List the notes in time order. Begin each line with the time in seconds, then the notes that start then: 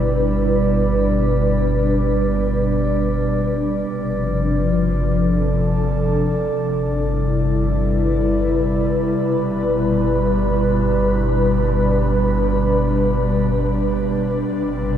Already playing: G1 B2 G3 D4 E4 B4 D5
3.88 G1 C3
4.07 F3
5.09 A4
6.55 G1
6.98 E4
7.04 G3
7.74 B4
9.19 G1 B2
11.04 D4
14.49 G1 C3